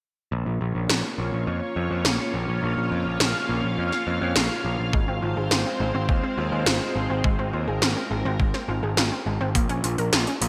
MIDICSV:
0, 0, Header, 1, 5, 480
1, 0, Start_track
1, 0, Key_signature, -5, "minor"
1, 0, Tempo, 576923
1, 265, Time_signature, 4, 2, 24, 8
1, 8723, End_track
2, 0, Start_track
2, 0, Title_t, "String machine"
2, 0, Program_c, 0, 50
2, 265, Note_on_c, 0, 61, 75
2, 265, Note_on_c, 0, 77, 94
2, 266, Note_on_c, 0, 58, 81
2, 266, Note_on_c, 0, 65, 76
2, 266, Note_on_c, 0, 73, 73
2, 4072, Note_off_c, 0, 58, 0
2, 4072, Note_off_c, 0, 61, 0
2, 4072, Note_off_c, 0, 73, 0
2, 4107, Note_on_c, 0, 56, 84
2, 4107, Note_on_c, 0, 60, 76
2, 4107, Note_on_c, 0, 72, 77
2, 6007, Note_off_c, 0, 72, 0
2, 6025, Note_on_c, 0, 70, 78
2, 7912, Note_off_c, 0, 77, 0
2, 7913, Note_off_c, 0, 56, 0
2, 7913, Note_off_c, 0, 60, 0
2, 7913, Note_off_c, 0, 65, 0
2, 7926, Note_off_c, 0, 70, 0
2, 8723, End_track
3, 0, Start_track
3, 0, Title_t, "Synth arpeggio sound"
3, 0, Program_c, 1, 84
3, 4107, Note_on_c, 1, 56, 95
3, 4156, Note_off_c, 1, 56, 0
3, 4226, Note_on_c, 1, 60, 99
3, 4340, Note_off_c, 1, 60, 0
3, 4347, Note_on_c, 1, 65, 77
3, 4396, Note_off_c, 1, 65, 0
3, 4468, Note_on_c, 1, 68, 78
3, 4550, Note_off_c, 1, 68, 0
3, 4588, Note_on_c, 1, 65, 100
3, 4670, Note_off_c, 1, 65, 0
3, 4708, Note_on_c, 1, 60, 73
3, 4821, Note_off_c, 1, 60, 0
3, 4828, Note_on_c, 1, 56, 75
3, 4877, Note_off_c, 1, 56, 0
3, 4948, Note_on_c, 1, 60, 98
3, 5030, Note_off_c, 1, 60, 0
3, 5067, Note_on_c, 1, 56, 94
3, 5116, Note_off_c, 1, 56, 0
3, 5187, Note_on_c, 1, 60, 100
3, 5300, Note_off_c, 1, 60, 0
3, 5307, Note_on_c, 1, 65, 77
3, 5356, Note_off_c, 1, 65, 0
3, 5426, Note_on_c, 1, 68, 76
3, 5509, Note_off_c, 1, 68, 0
3, 5547, Note_on_c, 1, 65, 97
3, 5630, Note_off_c, 1, 65, 0
3, 5667, Note_on_c, 1, 60, 73
3, 5780, Note_off_c, 1, 60, 0
3, 5786, Note_on_c, 1, 56, 76
3, 5836, Note_off_c, 1, 56, 0
3, 5907, Note_on_c, 1, 60, 98
3, 5989, Note_off_c, 1, 60, 0
3, 6027, Note_on_c, 1, 56, 103
3, 6076, Note_off_c, 1, 56, 0
3, 6147, Note_on_c, 1, 60, 100
3, 6260, Note_off_c, 1, 60, 0
3, 6267, Note_on_c, 1, 65, 76
3, 6316, Note_off_c, 1, 65, 0
3, 6387, Note_on_c, 1, 68, 79
3, 6469, Note_off_c, 1, 68, 0
3, 6507, Note_on_c, 1, 65, 99
3, 6589, Note_off_c, 1, 65, 0
3, 6627, Note_on_c, 1, 60, 77
3, 6740, Note_off_c, 1, 60, 0
3, 6747, Note_on_c, 1, 56, 73
3, 6796, Note_off_c, 1, 56, 0
3, 6867, Note_on_c, 1, 60, 104
3, 6949, Note_off_c, 1, 60, 0
3, 6986, Note_on_c, 1, 56, 97
3, 7036, Note_off_c, 1, 56, 0
3, 7107, Note_on_c, 1, 60, 101
3, 7220, Note_off_c, 1, 60, 0
3, 7226, Note_on_c, 1, 65, 77
3, 7276, Note_off_c, 1, 65, 0
3, 7347, Note_on_c, 1, 68, 75
3, 7429, Note_off_c, 1, 68, 0
3, 7466, Note_on_c, 1, 65, 98
3, 7549, Note_off_c, 1, 65, 0
3, 7587, Note_on_c, 1, 60, 72
3, 7700, Note_off_c, 1, 60, 0
3, 7707, Note_on_c, 1, 56, 74
3, 7756, Note_off_c, 1, 56, 0
3, 7826, Note_on_c, 1, 60, 99
3, 7909, Note_off_c, 1, 60, 0
3, 7946, Note_on_c, 1, 58, 100
3, 7996, Note_off_c, 1, 58, 0
3, 8064, Note_on_c, 1, 61, 104
3, 8179, Note_off_c, 1, 61, 0
3, 8186, Note_on_c, 1, 65, 77
3, 8235, Note_off_c, 1, 65, 0
3, 8306, Note_on_c, 1, 70, 79
3, 8389, Note_off_c, 1, 70, 0
3, 8426, Note_on_c, 1, 65, 103
3, 8509, Note_off_c, 1, 65, 0
3, 8547, Note_on_c, 1, 61, 78
3, 8660, Note_off_c, 1, 61, 0
3, 8666, Note_on_c, 1, 58, 76
3, 8716, Note_off_c, 1, 58, 0
3, 8723, End_track
4, 0, Start_track
4, 0, Title_t, "Picked electric bass"
4, 0, Program_c, 2, 34
4, 265, Note_on_c, 2, 34, 91
4, 364, Note_off_c, 2, 34, 0
4, 385, Note_on_c, 2, 34, 73
4, 484, Note_off_c, 2, 34, 0
4, 506, Note_on_c, 2, 34, 88
4, 604, Note_off_c, 2, 34, 0
4, 624, Note_on_c, 2, 34, 77
4, 724, Note_off_c, 2, 34, 0
4, 745, Note_on_c, 2, 34, 93
4, 844, Note_off_c, 2, 34, 0
4, 984, Note_on_c, 2, 34, 85
4, 1084, Note_off_c, 2, 34, 0
4, 1105, Note_on_c, 2, 34, 74
4, 1204, Note_off_c, 2, 34, 0
4, 1225, Note_on_c, 2, 41, 95
4, 1324, Note_off_c, 2, 41, 0
4, 1466, Note_on_c, 2, 41, 86
4, 1564, Note_off_c, 2, 41, 0
4, 1587, Note_on_c, 2, 41, 76
4, 1685, Note_off_c, 2, 41, 0
4, 1706, Note_on_c, 2, 34, 97
4, 1805, Note_off_c, 2, 34, 0
4, 1946, Note_on_c, 2, 34, 87
4, 2044, Note_off_c, 2, 34, 0
4, 2066, Note_on_c, 2, 34, 78
4, 2165, Note_off_c, 2, 34, 0
4, 2185, Note_on_c, 2, 34, 97
4, 2284, Note_off_c, 2, 34, 0
4, 2305, Note_on_c, 2, 34, 72
4, 2404, Note_off_c, 2, 34, 0
4, 2425, Note_on_c, 2, 41, 88
4, 2524, Note_off_c, 2, 41, 0
4, 2545, Note_on_c, 2, 34, 74
4, 2644, Note_off_c, 2, 34, 0
4, 2665, Note_on_c, 2, 34, 96
4, 2764, Note_off_c, 2, 34, 0
4, 2905, Note_on_c, 2, 34, 88
4, 3004, Note_off_c, 2, 34, 0
4, 3026, Note_on_c, 2, 34, 77
4, 3125, Note_off_c, 2, 34, 0
4, 3146, Note_on_c, 2, 41, 94
4, 3244, Note_off_c, 2, 41, 0
4, 3385, Note_on_c, 2, 41, 89
4, 3484, Note_off_c, 2, 41, 0
4, 3506, Note_on_c, 2, 41, 79
4, 3604, Note_off_c, 2, 41, 0
4, 3626, Note_on_c, 2, 34, 95
4, 3725, Note_off_c, 2, 34, 0
4, 3865, Note_on_c, 2, 34, 90
4, 3964, Note_off_c, 2, 34, 0
4, 3987, Note_on_c, 2, 34, 80
4, 4085, Note_off_c, 2, 34, 0
4, 4105, Note_on_c, 2, 32, 95
4, 4204, Note_off_c, 2, 32, 0
4, 4226, Note_on_c, 2, 32, 75
4, 4325, Note_off_c, 2, 32, 0
4, 4346, Note_on_c, 2, 32, 88
4, 4445, Note_off_c, 2, 32, 0
4, 4466, Note_on_c, 2, 32, 74
4, 4564, Note_off_c, 2, 32, 0
4, 4586, Note_on_c, 2, 32, 96
4, 4684, Note_off_c, 2, 32, 0
4, 4826, Note_on_c, 2, 32, 88
4, 4924, Note_off_c, 2, 32, 0
4, 4945, Note_on_c, 2, 32, 78
4, 5044, Note_off_c, 2, 32, 0
4, 5065, Note_on_c, 2, 39, 97
4, 5164, Note_off_c, 2, 39, 0
4, 5304, Note_on_c, 2, 39, 88
4, 5404, Note_off_c, 2, 39, 0
4, 5425, Note_on_c, 2, 39, 79
4, 5524, Note_off_c, 2, 39, 0
4, 5545, Note_on_c, 2, 32, 94
4, 5644, Note_off_c, 2, 32, 0
4, 5786, Note_on_c, 2, 32, 91
4, 5885, Note_off_c, 2, 32, 0
4, 5907, Note_on_c, 2, 32, 79
4, 6005, Note_off_c, 2, 32, 0
4, 6026, Note_on_c, 2, 32, 96
4, 6124, Note_off_c, 2, 32, 0
4, 6147, Note_on_c, 2, 32, 73
4, 6245, Note_off_c, 2, 32, 0
4, 6266, Note_on_c, 2, 39, 91
4, 6365, Note_off_c, 2, 39, 0
4, 6386, Note_on_c, 2, 32, 77
4, 6485, Note_off_c, 2, 32, 0
4, 6506, Note_on_c, 2, 32, 93
4, 6604, Note_off_c, 2, 32, 0
4, 6745, Note_on_c, 2, 32, 87
4, 6844, Note_off_c, 2, 32, 0
4, 6866, Note_on_c, 2, 32, 78
4, 6965, Note_off_c, 2, 32, 0
4, 7224, Note_on_c, 2, 32, 87
4, 7324, Note_off_c, 2, 32, 0
4, 7344, Note_on_c, 2, 32, 81
4, 7444, Note_off_c, 2, 32, 0
4, 7465, Note_on_c, 2, 32, 93
4, 7564, Note_off_c, 2, 32, 0
4, 7705, Note_on_c, 2, 32, 90
4, 7804, Note_off_c, 2, 32, 0
4, 7825, Note_on_c, 2, 32, 78
4, 7924, Note_off_c, 2, 32, 0
4, 7946, Note_on_c, 2, 34, 99
4, 8044, Note_off_c, 2, 34, 0
4, 8064, Note_on_c, 2, 34, 74
4, 8164, Note_off_c, 2, 34, 0
4, 8185, Note_on_c, 2, 34, 89
4, 8284, Note_off_c, 2, 34, 0
4, 8305, Note_on_c, 2, 34, 78
4, 8404, Note_off_c, 2, 34, 0
4, 8424, Note_on_c, 2, 34, 96
4, 8524, Note_off_c, 2, 34, 0
4, 8664, Note_on_c, 2, 34, 88
4, 8723, Note_off_c, 2, 34, 0
4, 8723, End_track
5, 0, Start_track
5, 0, Title_t, "Drums"
5, 745, Note_on_c, 9, 38, 110
5, 828, Note_off_c, 9, 38, 0
5, 1704, Note_on_c, 9, 38, 111
5, 1788, Note_off_c, 9, 38, 0
5, 2664, Note_on_c, 9, 38, 113
5, 2747, Note_off_c, 9, 38, 0
5, 3265, Note_on_c, 9, 38, 35
5, 3348, Note_off_c, 9, 38, 0
5, 3625, Note_on_c, 9, 38, 120
5, 3708, Note_off_c, 9, 38, 0
5, 4105, Note_on_c, 9, 36, 121
5, 4188, Note_off_c, 9, 36, 0
5, 4585, Note_on_c, 9, 38, 120
5, 4668, Note_off_c, 9, 38, 0
5, 5065, Note_on_c, 9, 36, 117
5, 5148, Note_off_c, 9, 36, 0
5, 5545, Note_on_c, 9, 38, 119
5, 5628, Note_off_c, 9, 38, 0
5, 6025, Note_on_c, 9, 36, 117
5, 6109, Note_off_c, 9, 36, 0
5, 6505, Note_on_c, 9, 38, 116
5, 6589, Note_off_c, 9, 38, 0
5, 6985, Note_on_c, 9, 36, 120
5, 7069, Note_off_c, 9, 36, 0
5, 7106, Note_on_c, 9, 38, 36
5, 7189, Note_off_c, 9, 38, 0
5, 7465, Note_on_c, 9, 38, 114
5, 7548, Note_off_c, 9, 38, 0
5, 7946, Note_on_c, 9, 36, 116
5, 7946, Note_on_c, 9, 42, 67
5, 8029, Note_off_c, 9, 36, 0
5, 8029, Note_off_c, 9, 42, 0
5, 8066, Note_on_c, 9, 42, 39
5, 8149, Note_off_c, 9, 42, 0
5, 8186, Note_on_c, 9, 42, 95
5, 8269, Note_off_c, 9, 42, 0
5, 8306, Note_on_c, 9, 42, 40
5, 8389, Note_off_c, 9, 42, 0
5, 8426, Note_on_c, 9, 38, 112
5, 8426, Note_on_c, 9, 42, 68
5, 8509, Note_off_c, 9, 38, 0
5, 8509, Note_off_c, 9, 42, 0
5, 8546, Note_on_c, 9, 42, 39
5, 8629, Note_off_c, 9, 42, 0
5, 8666, Note_on_c, 9, 42, 95
5, 8723, Note_off_c, 9, 42, 0
5, 8723, End_track
0, 0, End_of_file